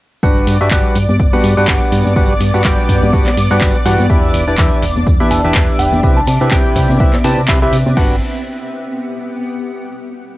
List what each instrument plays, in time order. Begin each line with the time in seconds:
0.23 fm bass G1, synth stab G3 D4 F#4 G4 B4 F#5, ambient pad B3, analog synth pad D5 D6, kick, tambourine, cabasa
0.37 ambient pad D5, tambourine, cabasa
0.47 fm bass G2, open hi-hat, tambourine, cabasa
0.61 fm bass G2, synth stab G3 D4 F#4 G4 B4 E5, tambourine, cabasa
0.71 fm bass G1, synth stab G3 D4 F#4 G4 B4 F#5, kick, clap, tambourine, cabasa
0.85 tambourine, cabasa
0.95 fm bass G2, open hi-hat, tambourine, cabasa
1.09 fm bass G2, tambourine, high conga, cabasa
1.19 fm bass G1, kick, tambourine, cabasa
1.33 synth stab G3 D4 F#4 G4 B4 F#5, tambourine, high conga, cabasa
1.44 fm bass G2, open hi-hat, tambourine, cabasa
1.57 fm bass G2, synth stab G3 D4 F#4 G4 B4 F#5, tambourine, cabasa
1.68 fm bass G1, kick, clap, tambourine, cabasa
1.81 tambourine, cabasa
1.92 fm bass G2, open hi-hat, tambourine, cabasa
2.05 fm bass G2, tambourine, high conga, cabasa
2.16 fm bass G1, synth stab G3 D4 F#4 G4 B4 F#5, kick, tambourine, cabasa
2.30 tambourine, cabasa
2.41 fm bass G2, open hi-hat, tambourine, cabasa
2.54 fm bass G2, synth stab G3 D4 F#4 G4 B4 F#5, tambourine, cabasa
2.64 fm bass G1, synth stab G3 D4 F#4 G4 B4 G5, kick, clap, tambourine, cabasa
2.79 tambourine, cabasa
2.89 fm bass G2, kick, open hi-hat, tambourine, cabasa
3.03 fm bass G2, tambourine, high conga, cabasa
3.13 fm bass G1, synth stab G3 D4 F#4 G4 B4 F#5, kick, tambourine, cabasa
3.26 clap, tambourine, high conga, cabasa
3.37 fm bass G2, open hi-hat, tambourine, cabasa
3.51 fm bass G2, synth stab G3 D4 F#4 G4 B4 F#5, tambourine, cabasa
3.61 fm bass G1, kick, clap, tambourine, cabasa
3.75 tambourine, cabasa
3.86 fm bass G2, synth stab E3 D4 F#4 G4 B4 F#5, open hi-hat, tambourine, cabasa
3.99 fm bass G2, tambourine, high conga, cabasa
4.10 fm bass E2, synth stab E3 D4 E4 G4 B4 E5, ambient pad D4, kick, tambourine, cabasa
4.24 tambourine, cabasa
4.34 fm bass E1, open hi-hat, tambourine, cabasa
4.48 fm bass E1, synth stab E3 D4 E4 G4 B4 D5, tambourine, cabasa
4.58 fm bass E2, synth stab E3 D4 E4 G4 B4 E5, kick, clap, tambourine, cabasa
4.72 ambient pad E5, tambourine, cabasa
4.82 fm bass E1, open hi-hat, tambourine, cabasa
4.96 fm bass E1, tambourine, high conga, cabasa
5.07 fm bass E2, kick, tambourine, cabasa
5.20 synth stab E3 D4 E4 G4 B4 E5, tambourine, high conga, cabasa
5.31 fm bass E1, synth bell A5, open hi-hat, tambourine, cabasa
5.44 fm bass E1, synth stab E3 D4 E4 G4 B4 E5, tambourine, cabasa
5.55 fm bass E2, kick, clap, tambourine, cabasa
5.68 tambourine, cabasa
5.79 fm bass E1, synth bell G5, open hi-hat, tambourine, cabasa
5.93 fm bass E1, tambourine, high conga, cabasa
6.03 fm bass C2, synth stab C3 C4 E4 G4 B4 E5, ambient pad C4, kick, tambourine, cabasa
6.17 synth bell A5, tambourine, cabasa
6.27 fm bass C3, synth bell A5, open hi-hat, tambourine, cabasa
6.41 synth stab C3 C4 E4 G4 B4 E5, fm bass C3, ambient pad B4, tambourine, cabasa
6.51 fm bass C2, synth stab C3 C4 E4 G4 B4 G5, kick, clap, tambourine, cabasa
6.66 tambourine, cabasa
6.76 fm bass C3, kick, open hi-hat, tambourine, cabasa
6.90 fm bass C3, tambourine, high conga, cabasa
6.99 fm bass C2, synth stab C3 C4 E4 G4 B4 E5, kick, tambourine, cabasa
7.13 clap, tambourine, high conga, cabasa
7.24 fm bass C3, synth stab C3 C4 E4 G4 B4 A5, open hi-hat, tambourine, cabasa
7.38 fm bass C3, tambourine, cabasa
7.48 fm bass C2, synth stab C3 C4 E4 G4 B4 E5, kick, clap, tambourine, cabasa
7.62 synth stab C3 C4 E4 G4 B4 E5, tambourine, cabasa
7.73 fm bass C3, open hi-hat, tambourine, cabasa
7.86 fm bass C3, tambourine, high conga, cabasa
7.97 fm bass G1, ambient pad B3, synth stab D4 F#4 G4 B4 F#5, kick, crash
8.05 ambient pad G4
8.13 ambient pad F#5